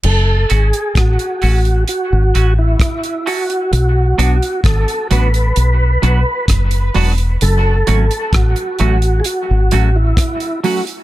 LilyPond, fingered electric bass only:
\new Staff \with { instrumentName = "Fingered electric bass" } { \clef bass \time 4/4 \key fis \minor \tempo 4 = 65 fis,,8 gis,,16 r16 a,,16 r16 a,,8 r16 gis,,16 a,,8 r4 | b,,8 b,,16 r16 gis,,16 r16 a,,8 b,,8 b,,16 r16 fis,,8 e,,8 | fis,,8 gis,,16 r16 a,,16 r16 a,,8 r16 gis,,16 a,,8 r4 | }